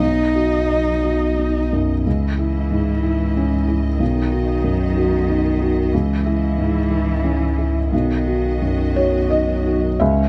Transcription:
Already playing: D#4 D#5
0.00 B1 F#3 D#4
0.35 F#4
0.69 D#5
1.03 F#4
1.38 D#4
1.73 F#2
2.05 C#2 E3 G#3 E4 D#5
2.38 E4
2.71 G#2
3.03 E4
3.37 C#4
3.68 E4
3.99 B1 D#3 F#3 D#4
4.32 F#4
4.64 F#2
4.97 F#4
5.29 D#4
5.62 F#4
5.92 C#2 E3 G#3 E4
6.26 E4
6.58 G#2
6.91 E4
7.24 C#4
7.58 E4
7.91 B1 D#3 F#3 F#4 D#5
8.28 F#4
8.62 F#2
8.96 F#4 C#5
9.30 D#4 D#5
9.66 F#4
10.00 C#2 G#3 C#4 C#5 E5

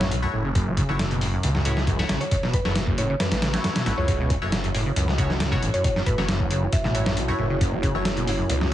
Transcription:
Already playing: A1
0.00 F#2 C#5, snare
0.11 B1 C#3, closed hi-hat
0.22 F#2 A3 E4 F#4 C#5
0.33 F#1 A2
0.45 C#3
0.55 F#2, kick, closed hi-hat
0.67 A3
0.77 C#3, kick, closed hi-hat
0.89 F#1 F#3 A3 E4 F#4 C#5
0.99 F#2, snare, closed hi-hat
1.11 B2, closed hi-hat
1.21 F#2, open hi-hat
1.34 F#2
1.43 C#2 C#3, closed hi-hat
1.55 F#2, snare
1.65 A2 A3 E4 F#4 C#5, closed hi-hat
1.77 C#3, snare
1.87 F#2, kick, closed hi-hat
1.99 A3 E4 F#4 C#5, snare
2.09 A1 C#3, snare, closed hi-hat
2.21 F#3 C#5, closed hi-hat
2.31 F#2 C#5, kick, closed hi-hat
2.43 B2, snare
2.54 F#2 B4, kick, closed hi-hat
2.65 F#1 F#2 A3 E4 F#4 C#5, snare
2.76 C#3, snare, closed hi-hat
2.87 F#2, kick
2.98 A2 C#5, closed hi-hat
3.10 C#3 C#5
3.20 F#2 B4, snare, closed hi-hat
3.32 A1 A3 B4, snare, closed hi-hat
3.42 C#3, snare, closed hi-hat
3.53 F#3 A3 E4 F#4 C#5, snare, closed hi-hat
3.64 F#2, snare, closed hi-hat
3.76 B2, snare, closed hi-hat
3.86 A1 F#2 A3 E4 F#4 C#5, snare, closed hi-hat
3.98 C#2 F#2 C#5
4.08 F#2 A3 E4 F#4 C#5, kick, closed hi-hat
4.20 B2
4.30 F#2, kick, closed hi-hat
4.42 F#1 F#2 A3 E4 F#4 C#5
4.52 C#3, snare, closed hi-hat
4.64 F#2, closed hi-hat
4.74 A2, open hi-hat
4.86 C#3
4.96 C#2 F#2, closed hi-hat
5.08 A3, snare
5.18 C#3 A3 E4 F#4 C#5, kick, closed hi-hat
5.30 F#3, snare
5.40 F#2, snare, closed hi-hat
5.52 B2 A3 E4 F#4 C#5, kick
5.62 A1 F#2, closed hi-hat
5.74 F#2 C#5, closed hi-hat
5.84 C#3 C#5, kick, closed hi-hat
5.96 F#2, snare
6.06 A2 B4, kick, closed hi-hat
6.18 F#1 C#3 A3 E4 F#4 C#5, snare
6.28 F#2, snare, closed hi-hat
6.40 A3, kick
6.51 C#3, closed hi-hat
6.62 F#3
6.73 F#2 E5, kick, closed hi-hat
6.84 A1 B2 E5, snare
6.94 F#2 A3 E4 F#4 C#5, closed hi-hat
7.06 F#2 C#5, snare
7.16 B1 C#3, closed hi-hat
7.28 F#2 A3 E4 F#4 C#5
7.38 F#1 A2
7.50 C#3
7.60 F#2, kick, closed hi-hat
7.72 A3
7.82 C#3, kick, closed hi-hat
7.94 F#1 F#3 A3 E4 F#4 C#5
8.05 F#2, snare, closed hi-hat
8.16 B2, closed hi-hat
8.27 F#2, open hi-hat
8.38 F#2
8.49 C#2 C#3, closed hi-hat
8.61 F#2, snare

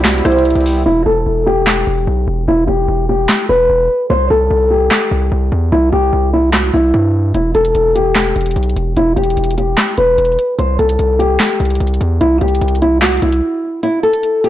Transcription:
Already playing: C2 B2 C3 G3 E4
0.05 F#4, snare, clap, closed hi-hat
0.11 closed hi-hat
0.18 closed hi-hat
0.25 C2 E4 C5, cross-stick, closed hi-hat
0.32 closed hi-hat
0.38 closed hi-hat
0.45 closed hi-hat
0.50 closed hi-hat
0.55 C2, closed hi-hat
0.60 closed hi-hat
0.66 open hi-hat
0.86 E1 E4
1.06 E1 A4
1.26 E1
1.47 G4
1.67 snare, clap
1.87 E1
2.07 B1
2.27 E1
2.48 E1 E4
2.67 E1 G4
2.88 E1
3.09 G4
3.29 snare, clap
3.49 E1 B4
3.69 E1
4.10 C2 C5
4.30 C2 A4
4.50 C2
4.71 G4
4.91 snare, clap
5.11 C2
5.32 C2
5.52 E2
5.72 C2 E4
5.92 C2 G4
6.13 C2
6.33 E4
6.53 F#4, snare, clap
6.74 C2 E4
6.94 G2
7.34 E1 E4, closed hi-hat
7.55 E1 A4, closed hi-hat
7.65 closed hi-hat
7.75 E1, closed hi-hat
7.95 G4, closed hi-hat
8.15 snare, clap, closed hi-hat
8.36 E1, closed hi-hat
8.41 closed hi-hat
8.46 closed hi-hat
8.51 closed hi-hat
8.56 B1, closed hi-hat
8.63 closed hi-hat
8.69 closed hi-hat
8.76 E1, closed hi-hat
8.96 E1 E4, closed hi-hat
9.16 E1 G4, closed hi-hat
9.24 closed hi-hat
9.30 closed hi-hat
9.37 E1, closed hi-hat
9.44 closed hi-hat
9.51 closed hi-hat
9.58 G4, closed hi-hat
9.78 snare, clap, closed hi-hat
9.97 E1 B4, closed hi-hat
10.18 E1, closed hi-hat
10.25 closed hi-hat
10.32 closed hi-hat
10.39 closed hi-hat
10.58 C2 C5, closed hi-hat
10.79 C2 A4, closed hi-hat
10.89 closed hi-hat
10.99 C2, closed hi-hat
11.19 G4, closed hi-hat
11.40 snare, clap, closed hi-hat
11.60 C2, closed hi-hat
11.65 closed hi-hat
11.70 closed hi-hat
11.75 closed hi-hat
11.80 C2, closed hi-hat
11.87 closed hi-hat
11.94 closed hi-hat
12.01 E2, closed hi-hat
12.21 C2 E4, closed hi-hat
12.41 C2 G4, closed hi-hat
12.48 closed hi-hat
12.55 closed hi-hat
12.61 C2, closed hi-hat
12.68 closed hi-hat
12.75 closed hi-hat
12.82 E4, closed hi-hat
13.02 F#4, snare, clap, closed hi-hat
13.07 closed hi-hat
13.12 closed hi-hat
13.17 closed hi-hat
13.22 C2 E4, closed hi-hat
13.32 closed hi-hat
13.83 E4, closed hi-hat
14.03 A4, closed hi-hat
14.13 closed hi-hat
14.23 closed hi-hat
14.44 G4, closed hi-hat

